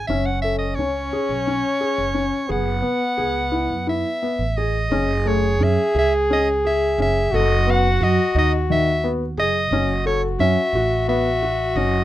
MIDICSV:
0, 0, Header, 1, 5, 480
1, 0, Start_track
1, 0, Tempo, 691244
1, 56, Time_signature, 7, 3, 24, 8
1, 4616, Tempo, 682594
1, 8409, End_track
2, 0, Start_track
2, 0, Title_t, "Soprano saxophone"
2, 0, Program_c, 0, 64
2, 50, Note_on_c, 0, 76, 95
2, 179, Note_on_c, 0, 78, 87
2, 189, Note_off_c, 0, 76, 0
2, 287, Note_off_c, 0, 78, 0
2, 291, Note_on_c, 0, 76, 97
2, 401, Note_off_c, 0, 76, 0
2, 405, Note_on_c, 0, 75, 77
2, 524, Note_on_c, 0, 73, 99
2, 535, Note_off_c, 0, 75, 0
2, 1722, Note_off_c, 0, 73, 0
2, 1747, Note_on_c, 0, 78, 99
2, 2672, Note_off_c, 0, 78, 0
2, 2703, Note_on_c, 0, 76, 95
2, 3174, Note_on_c, 0, 75, 94
2, 3184, Note_off_c, 0, 76, 0
2, 3665, Note_on_c, 0, 73, 88
2, 3675, Note_off_c, 0, 75, 0
2, 3910, Note_on_c, 0, 76, 88
2, 3921, Note_off_c, 0, 73, 0
2, 4144, Note_off_c, 0, 76, 0
2, 4156, Note_on_c, 0, 76, 92
2, 4260, Note_off_c, 0, 76, 0
2, 4395, Note_on_c, 0, 75, 86
2, 4499, Note_off_c, 0, 75, 0
2, 4631, Note_on_c, 0, 76, 94
2, 4849, Note_off_c, 0, 76, 0
2, 4878, Note_on_c, 0, 76, 97
2, 5113, Note_on_c, 0, 75, 107
2, 5124, Note_off_c, 0, 76, 0
2, 5360, Note_on_c, 0, 78, 116
2, 5370, Note_off_c, 0, 75, 0
2, 5590, Note_on_c, 0, 75, 94
2, 5601, Note_off_c, 0, 78, 0
2, 5823, Note_off_c, 0, 75, 0
2, 5836, Note_on_c, 0, 75, 95
2, 5939, Note_off_c, 0, 75, 0
2, 6073, Note_on_c, 0, 76, 103
2, 6337, Note_off_c, 0, 76, 0
2, 6548, Note_on_c, 0, 75, 105
2, 6993, Note_off_c, 0, 75, 0
2, 7020, Note_on_c, 0, 73, 92
2, 7127, Note_off_c, 0, 73, 0
2, 7255, Note_on_c, 0, 76, 104
2, 7708, Note_off_c, 0, 76, 0
2, 7741, Note_on_c, 0, 76, 105
2, 8215, Note_on_c, 0, 75, 91
2, 8226, Note_off_c, 0, 76, 0
2, 8409, Note_off_c, 0, 75, 0
2, 8409, End_track
3, 0, Start_track
3, 0, Title_t, "French horn"
3, 0, Program_c, 1, 60
3, 60, Note_on_c, 1, 61, 100
3, 1721, Note_on_c, 1, 59, 88
3, 1731, Note_off_c, 1, 61, 0
3, 3171, Note_off_c, 1, 59, 0
3, 3405, Note_on_c, 1, 68, 117
3, 5085, Note_on_c, 1, 66, 109
3, 5095, Note_off_c, 1, 68, 0
3, 6580, Note_off_c, 1, 66, 0
3, 6771, Note_on_c, 1, 66, 104
3, 8409, Note_off_c, 1, 66, 0
3, 8409, End_track
4, 0, Start_track
4, 0, Title_t, "Felt piano"
4, 0, Program_c, 2, 0
4, 67, Note_on_c, 2, 61, 80
4, 192, Note_off_c, 2, 61, 0
4, 305, Note_on_c, 2, 69, 73
4, 431, Note_off_c, 2, 69, 0
4, 548, Note_on_c, 2, 61, 69
4, 672, Note_off_c, 2, 61, 0
4, 784, Note_on_c, 2, 68, 72
4, 909, Note_off_c, 2, 68, 0
4, 1022, Note_on_c, 2, 61, 74
4, 1147, Note_off_c, 2, 61, 0
4, 1254, Note_on_c, 2, 68, 71
4, 1381, Note_off_c, 2, 68, 0
4, 1489, Note_on_c, 2, 61, 68
4, 1617, Note_off_c, 2, 61, 0
4, 1729, Note_on_c, 2, 68, 83
4, 1857, Note_off_c, 2, 68, 0
4, 1960, Note_on_c, 2, 59, 75
4, 2090, Note_off_c, 2, 59, 0
4, 2205, Note_on_c, 2, 68, 73
4, 2335, Note_off_c, 2, 68, 0
4, 2443, Note_on_c, 2, 64, 74
4, 2574, Note_off_c, 2, 64, 0
4, 2688, Note_on_c, 2, 64, 73
4, 2819, Note_off_c, 2, 64, 0
4, 2933, Note_on_c, 2, 59, 71
4, 3063, Note_off_c, 2, 59, 0
4, 3178, Note_on_c, 2, 68, 71
4, 3306, Note_off_c, 2, 68, 0
4, 3414, Note_on_c, 2, 61, 88
4, 3544, Note_off_c, 2, 61, 0
4, 3648, Note_on_c, 2, 57, 76
4, 3779, Note_off_c, 2, 57, 0
4, 3893, Note_on_c, 2, 61, 73
4, 4023, Note_off_c, 2, 61, 0
4, 4136, Note_on_c, 2, 68, 81
4, 4265, Note_off_c, 2, 68, 0
4, 4377, Note_on_c, 2, 61, 75
4, 4506, Note_off_c, 2, 61, 0
4, 4618, Note_on_c, 2, 68, 77
4, 4747, Note_off_c, 2, 68, 0
4, 4861, Note_on_c, 2, 61, 72
4, 4989, Note_off_c, 2, 61, 0
4, 5103, Note_on_c, 2, 69, 90
4, 5231, Note_off_c, 2, 69, 0
4, 5332, Note_on_c, 2, 59, 79
4, 5462, Note_off_c, 2, 59, 0
4, 5574, Note_on_c, 2, 66, 77
4, 5703, Note_off_c, 2, 66, 0
4, 5817, Note_on_c, 2, 63, 86
4, 5945, Note_off_c, 2, 63, 0
4, 6059, Note_on_c, 2, 51, 79
4, 6186, Note_off_c, 2, 51, 0
4, 6297, Note_on_c, 2, 59, 82
4, 6424, Note_off_c, 2, 59, 0
4, 6536, Note_on_c, 2, 68, 75
4, 6664, Note_off_c, 2, 68, 0
4, 6781, Note_on_c, 2, 61, 96
4, 6908, Note_off_c, 2, 61, 0
4, 7013, Note_on_c, 2, 69, 81
4, 7143, Note_off_c, 2, 69, 0
4, 7257, Note_on_c, 2, 61, 81
4, 7386, Note_off_c, 2, 61, 0
4, 7502, Note_on_c, 2, 66, 82
4, 7629, Note_off_c, 2, 66, 0
4, 7735, Note_on_c, 2, 59, 83
4, 7864, Note_off_c, 2, 59, 0
4, 7977, Note_on_c, 2, 66, 81
4, 8106, Note_off_c, 2, 66, 0
4, 8218, Note_on_c, 2, 61, 72
4, 8347, Note_off_c, 2, 61, 0
4, 8409, End_track
5, 0, Start_track
5, 0, Title_t, "Upright bass"
5, 0, Program_c, 3, 32
5, 61, Note_on_c, 3, 30, 99
5, 507, Note_off_c, 3, 30, 0
5, 537, Note_on_c, 3, 37, 82
5, 754, Note_off_c, 3, 37, 0
5, 897, Note_on_c, 3, 35, 75
5, 1113, Note_off_c, 3, 35, 0
5, 1376, Note_on_c, 3, 30, 75
5, 1592, Note_off_c, 3, 30, 0
5, 1735, Note_on_c, 3, 30, 103
5, 1952, Note_off_c, 3, 30, 0
5, 2209, Note_on_c, 3, 37, 84
5, 2542, Note_off_c, 3, 37, 0
5, 2569, Note_on_c, 3, 42, 71
5, 2792, Note_off_c, 3, 42, 0
5, 3047, Note_on_c, 3, 33, 74
5, 3385, Note_off_c, 3, 33, 0
5, 3409, Note_on_c, 3, 30, 99
5, 3866, Note_off_c, 3, 30, 0
5, 3886, Note_on_c, 3, 42, 94
5, 4002, Note_off_c, 3, 42, 0
5, 4128, Note_on_c, 3, 37, 85
5, 4825, Note_off_c, 3, 37, 0
5, 4852, Note_on_c, 3, 30, 97
5, 5076, Note_off_c, 3, 30, 0
5, 5091, Note_on_c, 3, 30, 95
5, 5546, Note_off_c, 3, 30, 0
5, 5572, Note_on_c, 3, 42, 105
5, 5685, Note_off_c, 3, 42, 0
5, 5812, Note_on_c, 3, 39, 91
5, 6503, Note_off_c, 3, 39, 0
5, 6534, Note_on_c, 3, 30, 102
5, 6754, Note_off_c, 3, 30, 0
5, 6770, Note_on_c, 3, 30, 102
5, 7226, Note_off_c, 3, 30, 0
5, 7250, Note_on_c, 3, 42, 108
5, 7363, Note_off_c, 3, 42, 0
5, 7487, Note_on_c, 3, 33, 88
5, 8184, Note_off_c, 3, 33, 0
5, 8209, Note_on_c, 3, 30, 105
5, 8409, Note_off_c, 3, 30, 0
5, 8409, End_track
0, 0, End_of_file